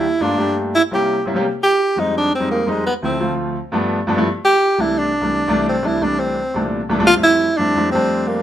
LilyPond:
<<
  \new Staff \with { instrumentName = "Tenor saxophone" } { \time 4/4 \key c \major \tempo 4 = 171 e'8 d'4 r8 e'8 g'4 r8 | r8 g'4 ees'8 d'8 c'8 bes8 aes8 | b8 c'4 r2 r8 | r8 g'4 e'8 d'2 |
c'8 e'8 d'8 c'4. r4 | \key f \major f'8 e'4 d'4 c'4 bes8 | }
  \new Staff \with { instrumentName = "Grand piano" } { \time 4/4 \key c \major r8 <g, a bes d' f'>16 r16 <g, a bes d' g'>4 r8 <c g bes des' e'>8. r16 <c g bes des' e'>16 <c g bes des' g'>16 | r4. <f, g aes c' ees'>4 r16 <f, g aes c' ees'>8 r16 <f, g aes c' ees'>8 | r8 <d, f a c' e'>16 r16 <d, f a c' f'>4 r8 <g, f a b d'>8. r16 <g, f a b d'>16 <g, f a b e'>16 | r4. <c, e g a d'>4 r16 <c, e g a d'>8 r16 <c, e g a d'>8~ |
<c, e g a d'>16 r16 <c, e g a d'>16 r16 <c, e g a d'>4 r8 <c, bes, e g a d'>8. r16 <c, bes, e g a d'>16 <c, bes, e g a d'>16 | \key f \major r16 <f, g a c' e'>8. r8 <f, g a c' e'>16 r16 <f, g a c' e'>16 r16 <f, g a c' d'>4. | }
>>